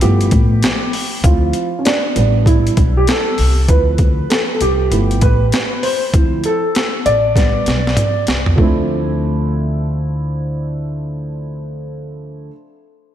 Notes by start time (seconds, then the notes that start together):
0.01 G1 F3 A3 B3 E4 G4, closed hi-hat
0.21 closed hi-hat
0.31 A1, kick, closed hi-hat
0.63 snare, closed hi-hat
0.93 open hi-hat
1.23 D2 F3 C4 E4 F4, kick, closed hi-hat
1.53 closed hi-hat
1.79 C#4
1.85 D4, snare, closed hi-hat
2.15 A1 G3 B3 D4, closed hi-hat
2.46 E4, kick, closed hi-hat
2.67 closed hi-hat
2.77 B1, kick, closed hi-hat
2.97 G4
3.07 A4, snare, closed hi-hat
3.38 C2, open hi-hat
3.68 D2 F3 C4 E4 B4, kick, closed hi-hat
3.98 kick, closed hi-hat
4.30 A4, snare, closed hi-hat
4.55 A4
4.61 C2 G4, closed hi-hat
4.90 G1 F3 A3 B3 E4, closed hi-hat
5.11 closed hi-hat
5.21 A1 B4, kick, closed hi-hat
5.52 snare, closed hi-hat
5.83 C5, open hi-hat
6.14 D2 F3 C4 E4, kick, closed hi-hat
6.44 A4, closed hi-hat
6.75 snare, closed hi-hat
7.06 A1 D5, closed hi-hat
7.36 G3 B3 D4, kick, snare, closed hi-hat
7.66 B1, snare, closed hi-hat
7.87 snare
7.97 closed hi-hat, mid tom
8.27 C2, snare, closed hi-hat
8.46 floor tom
8.56 D2 F3 A3 C4, kick
8.61 D4 E4